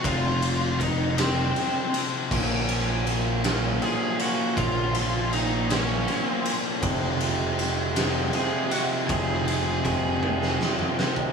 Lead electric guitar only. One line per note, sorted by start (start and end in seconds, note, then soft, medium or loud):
0.06 0.77 F4 medium
0.06 0.82 F5 loud
0.82 1.16 D#4 medium
0.82 1.20 D#5 medium
1.19 1.99 C4 medium
1.19 1.99 C5 medium
3.83 4.17 G#4 medium
3.83 4.17 G#5 loud
4.21 4.55 F#4 medium
4.21 4.59 F#5 medium
4.56 5.28 F4 medium
4.56 5.33 F5 loud
5.32 5.67 D#4 medium
5.32 5.71 D#5 medium
5.71 6.51 C#4 medium
5.71 6.26 C#5 medium
6.26 6.52 C5 medium
8.35 8.70 G#4 medium
8.35 8.71 G#5 medium
8.72 8.84 F#4 medium
8.72 8.82 F#5 medium
9.07 10.57 G#4 medium
9.07 10.56 G#5 loud